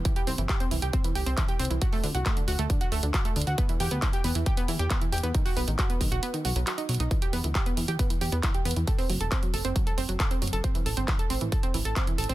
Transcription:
<<
  \new Staff \with { instrumentName = "Synth pluck" } { \time 4/4 \key e \minor \tempo 4 = 136 e16 g'16 c'16 e16 g'16 c'16 e16 g'16 c'16 e16 g'16 c'16 e16 g'16 c'16 e16 | fis'16 a16 d16 fis'16 a16 d16 fis'16 a16 d16 fis'16 a16 d16 fis'16 a16 d16 fis'16 | b16 e16 g'16 b16 e16 g'16 b16 e16 g'16 b16 e16 g'16 b16 e16 g'16 b16 | dis16 fis'16 b16 dis16 fis'16 b16 dis16 fis'16 b16 dis16 fis'16 fis16 fis'16 dis'16 fis16 dis'16 |
e16 g'16 b16 e16 g'16 b16 e16 g'16 b16 e16 g'16 b16 e16 g'16 b16 e16 | a'16 c'16 fis16 a'16 c'16 fis16 a'16 c'16 fis16 a'16 c'16 fis16 a'16 c'16 fis16 a'16 | c'16 e16 a'16 c'16 e16 a'16 c'16 e16 a'16 c'16 e16 a'16 c'16 e16 a'16 c'16 | }
  \new Staff \with { instrumentName = "Analog synth bass" } { \clef bass \time 4/4 \key e \minor r8 c,16 g,,16 r8 c,16 c,16 r8 c,16 c,16 r8 c,16 c,16 | r8 d,16 c,16 r8 d,16 d,16 r8 d,16 d,16 r8 d,16 d,16 | r8 e,16 d,16 r8 e,16 e,16 r8 e,16 e,16 r8 e,16 e,16 | r8 b,,16 a,,16 r8 b,,16 b,,16 r8 b,,16 b,,16 r8 b,,16 b,,16 |
r8 e,16 d,16 r8 e,16 e,16 r8 e,16 e,16 r8 e,16 e,16 | r8 fis,,16 e,,16 r8 fis,,16 fis,,16 r8 fis,,16 fis,,16 r8 fis,,16 fis,,16 | r8 a,,16 g,,16 r8 a,,16 a,,16 r8 a,,16 a,,16 r8 a,,16 a,,16 | }
  \new DrumStaff \with { instrumentName = "Drums" } \drummode { \time 4/4 <hh bd>16 hh16 hho16 hh16 <hc hh bd>16 hh16 hho16 hh16 <hh bd>16 hh16 hho16 hh16 <hc hh bd>16 hh16 hho32 hh32 hh16 | <hh bd>16 hho16 hho16 hh16 <hc hh bd>16 hh16 hho16 hh16 <hh bd>16 hh16 hho16 hh16 <hc hh bd>16 hh16 hho32 hh32 hh16 | <hh bd>16 hh16 hho16 hh16 <hc hh bd>16 hh16 hho16 hh16 <hh bd>16 hh16 hho16 hh16 <hc hh bd>16 hh16 hho32 hh32 hh16 | <hh bd>16 hho16 hho16 hh16 <hc hh bd>16 hh16 <hho bd>16 hh16 hh16 hh16 hho16 hh16 <hc hh>16 hh16 hho32 hh32 hh16 |
<hh bd>16 hh16 hho16 hh16 <hc hh bd>16 hh16 hho16 hh16 <hh bd>16 hh16 hho16 hh16 <hc hh bd>16 hh16 hho32 hh32 hh16 | <hh bd>16 hho16 hho16 hh16 <hc hh bd>16 hh16 hho16 hh16 <hh bd>16 hh16 hho16 hh16 <hc hh bd>16 hh16 hho32 hh32 hh16 | <hh bd>16 hh16 hho16 hh16 <hc hh bd>16 hh16 hho16 hh16 <hh bd>16 hh16 hho16 hh16 <hc hh bd>16 hh16 hho32 hh32 hh16 | }
>>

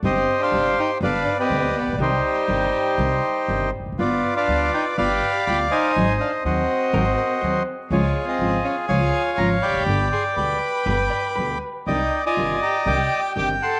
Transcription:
<<
  \new Staff \with { instrumentName = "Bandoneon" } { \time 4/4 \key c \minor \tempo 4 = 122 << { ees''8. f''8. g''8 f''8. ees''8. d''8 | c''2.~ c''8 r8 | d''8. f''8. g''8 b''4 b''8 aes''8~ | aes''8 f''8 ees''2~ ees''8 r8 |
des''8. ees''8. f''8 aes''4 bes''8 b''8~ | b''8 c'''8 d'''2~ d'''8 r8 | g''8. aes''8. bes''8 d'''4 d'''8 c'''8 | } \\ { <g' c''>8. c''4~ c''16 <b' d''>8. <g' b'>4~ <g' b'>16 | <ees' g'>2.~ <ees' g'>8 r8 | <f' b'>8. <b' d''>4~ <b' d''>16 <d'' f''>4. <c'' ees''>8~ | <c'' ees''>4 <ges' c''>2~ <ges' c''>8 r8 |
<f' aes'>8. aes'4~ aes'16 <des'' f''>4. <d'' g''>8~ | <d'' g''>4 <g'' b''>2~ <g'' b''>8 r8 | <d'' ees''>8. <d'' ees''>4~ <d'' ees''>16 g''4. <fis'' a''>8 | } >> }
  \new Staff \with { instrumentName = "Hollow-body jazz guitar" } { \time 4/4 \key c \minor r1 | r1 | r1 | r2 bes'16 c''16 bes'8 c''8. r16 |
r1 | r2 b'8 d''8 b'8. r16 | r1 | }
  \new Staff \with { instrumentName = "Violin" } { \time 4/4 \key c \minor c'8. d'8. ees'8 d'8. c'8. b8 | g2.~ g8 r8 | b8. d'8. ees'8 g'4 g'8 ees'8~ | ees'8 d'8 c'2~ c'8 r8 |
aes8. c'8. des'8 f'4 f'8 g'8~ | g'8 aes'8 b'2~ b'8 r8 | ees'8. f'8. g'8 g'4 g'8 a'8 | }
  \new Staff \with { instrumentName = "Nylon-string guitar" } { \clef bass \time 4/4 \key c \minor <c g c' ees' g'>8 r8 <c g c' ees' g'>8 r8 <b, d g b g'>8 r8 <b, d g b g'>8 r8 | <c ees g d' g'>8 r8 <c ees g d' g'>8 r8 <c ees g d' g'>8 r8 <c ees g d' g'>8 r8 | <g b f'>8 r8 <g b f'>8 r8 <g b f'>8 r8 <g b f'>8 r8 | <ees ges c' ees' aes'>8 r8 <ees ges c' ees' aes'>8 r8 <ees ges c' ees' aes'>8 r8 <ees ges c' ees' aes'>8 r8 |
<des f aes des' f'>8 r8 <des f aes des' f'>8 r8 <des f aes des' f'>8 r8 <des f aes des' f'>8 r8 | <b, d g b g'>8 r8 <b, d g b g'>8 r8 <b, d g b g'>8 r8 <b, d g b g'>8 r8 | <c ees g d' g'>8 r8 <c ees g d' g'>8 r8 <c ees g d' g'>8 r8 <c ees g d' g'>8 r8 | }
  \new Staff \with { instrumentName = "Upright bass" } { \clef bass \time 4/4 \key c \minor g,,16. r8 r32 g,,16. r8 r32 g,,16. r8 r32 d,16. r16 a,,32 bes,,32 b,,32 | c,16. r8 r32 g,,16. r8 r32 c,16. r8 r32 g,,16. r16 e,,32 f,,32 fis,,32 | g,,16. r8 r32 d,16. r8 r32 g,,16. r8 r32 d,16. r8 r32 | aes,,16. r8 r32 ees,16. r8 r32 aes,,16. r8 r32 ees,16. r8 r32 |
des,16. r8 r32 aes,,16. r8 r32 des,16. r8 r32 aes,,16. r16 e,,32 f,,32 fis,,32 | g,,16. r8 r32 d,16. r8 r32 g,,16. r8 r32 d,16. r8 r32 | c,16. r8 r32 g,,16. r8 r32 c,16. r8 r32 g,,16. r8 r32 | }
>>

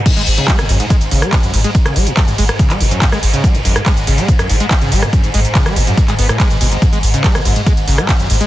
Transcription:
<<
  \new Staff \with { instrumentName = "Acid bass" } { \clef bass \time 4/4 \key cis \minor \tempo 4 = 142 gis,16 gis16 r16 cis16 gis16 gis,16 fis,16 gis,16 gis16 r16 cis16 gis16 gis,16 fis,16 gis,16 gis16 | r16 cis16 gis16 gis,16 fis,16 gis,16 gis16 r16 cis16 gis16 gis,16 fis,16 gis,16 gis16 r16 cis16 | gis16 gis,16 fis,16 gis,16 gis16 r16 cis16 gis16 gis,16 fis,16 gis,16 gis16 r16 cis16 gis16 gis,16 | fis,16 gis,16 gis16 r16 cis16 gis16 gis,16 fis,16 gis,16 gis16 b16 a,16 gis16 gis,16 b,16 gis,,16 |
gis,16 gis16 r16 cis16 gis16 gis,16 fis,16 gis,16 gis16 r16 cis16 gis16 gis,16 fis,16 gis,16 gis16 | }
  \new Staff \with { instrumentName = "Synth drone" } { \clef bass \time 4/4 \key cis \minor gis,1~ | gis,1~ | gis,1~ | gis,1~ |
gis,1 | }
  \new Staff \with { instrumentName = "Sub bass" } { \clef bass \time 4/4 \key cis \minor r16 gis,,16 gis,,16 r8 gis,,16 gis,,16 r8 gis,,16 gis,,16 r8 gis,,16 gis,,16 r16 | r16 gis,,16 gis,,16 r8 gis,,16 gis,,16 r8 gis,,16 gis,,16 r8 gis,,16 gis,,16 r16 | r16 gis,,16 gis,,16 r8 gis,,16 gis,,16 r8 gis,,16 gis,,16 r8 gis,,16 gis,,16 r16 | r16 gis,,16 gis,,16 r8 gis,,16 gis,,16 r8 gis,,16 gis,,16 r8 gis,,16 gis,,16 r16 |
r16 gis,,16 gis,,16 r8 gis,,16 gis,,16 r8 gis,,16 gis,,16 r8 gis,,16 gis,,16 r16 | }
  \new DrumStaff \with { instrumentName = "Drums" } \drummode { \time 4/4 <cymc hh bd cymr>16 hh16 hho16 hh16 <hc hh bd cymr>16 <hh ss>16 hho16 hh16 <hh bd cymr>16 hh16 hho16 <hh ss>16 <hc hh bd cymr>16 hh16 hho16 hh16 | <hh bd cymr>16 <hh ss>16 hho16 hh16 <hc hh bd cymr>16 hh16 hho16 <hh ss>16 <hh bd cymr>16 <hc hh>16 hho16 hh16 <hc hh bd cymr>16 <hh ss>16 hho16 hh16 | <hh bd cymr>16 hh16 hho16 <hh ss>16 <hc hh bd cymr>16 hh16 hho16 hh16 <hh bd cymr>16 <hh ss>16 hho16 hh16 <hc hh bd cymr>16 hh16 hho16 <hh ss>16 | <hh bd cymr>16 hh16 hho16 hh16 <hc hh bd cymr>16 <hh ss>16 hho16 hh16 <hh bd cymr>16 <hc hh>16 hho16 <hh ss>16 <hc hh bd cymr>16 hh16 hho16 hh16 |
<hh bd cymr>16 hh16 hho16 hh16 <hc hh bd cymr>16 <hh ss>16 hho16 hh16 <hh bd cymr>16 hh16 hho16 <hh ss>16 <hc hh bd cymr>16 hh16 hho16 hh16 | }
>>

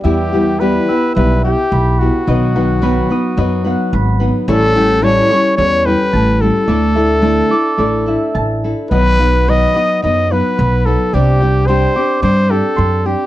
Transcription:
<<
  \new Staff \with { instrumentName = "Harp" } { \time 4/4 \key e \minor \tempo 4 = 109 e''8 g''8 b''8 e'''8 e''8 g''8 b''8 r8 | dis''8 fis''8 b''8 dis'''8 dis''8 fis''8 b''8 r8 | cis''8 g''8 a''8 cis'''8 cis''8 g''8 a''8 r8 | d''8 e''8 a''8 d'''8 d''8 e''8 a''8 r8 |
dis''8 fis''8 b''8 dis'''8 dis''8 fis''8 b''8 r8 | d''8 g''8 c'''8 d'''8 d''8 g''8 c'''8 r8 | }
  \new Staff \with { instrumentName = "Trumpet" } { \time 4/4 \key e \minor g'4 b'4 b'8 g'4 fis'8~ | fis'2.~ fis'8 r8 | a'4 cis''4 cis''8 b'4 a'8~ | a'2.~ a'8 r8 |
b'4 dis''4 dis''8 b'4 a'8 | g'4 c''4 c''8 a'4 g'8 | }
  \new Staff \with { instrumentName = "Nylon-string guitar" } { \time 4/4 \key e \minor <e g b e' g'>8 <e g b e' g'>8 <e g b e' g'>8 <b e' g'>8 <g b e' g'>8 <b e' g'>4 <b e' g'>8 | <b, dis fis b dis' b'>8 <b, dis fis b dis' b'>8 <b, dis fis b dis' b'>8 <fis b dis' b'>8 <fis b dis' b'>8 <fis b dis' b'>4 <fis b dis' b'>8 | <a, e g cis' e' a'>8 <a, e g cis' e' a'>8 <a, e g cis' e' a'>8 <g cis' e' a'>8 <g cis' e' a'>8 <g cis' e' a'>4 <g cis' e' a'>8 | <d a d' e' a'>8 <d a d' e' a'>8 <d a d' e' a'>8 <d' e' a'>8 <a d' e' a'>8 <d' e' a'>4 <d' e' a'>8 |
<b, dis fis b dis' b'>8 <b, dis fis b dis' b'>8 <b, dis fis b dis' b'>8 <fis b dis' b'>8 <fis b dis' b'>8 <fis b dis' b'>4 <fis b dis' b'>8 | <c g c' d' g'>8 <c g c' d' g'>8 <c g c' d' g'>8 <c' d' g'>8 <g c' d' g'>8 <c' d' g'>4 <c' d' g'>8 | }
  \new Staff \with { instrumentName = "Upright bass" } { \clef bass \time 4/4 \key e \minor e,2 b,,4 b,,4 | b,,2 fis,4 gis,,4 | a,,2 e,4 a,,4 | d,2 a,,4 a,,4 |
b,,2 fis,4 b,,4 | c,2 g,4 fis,4 | }
>>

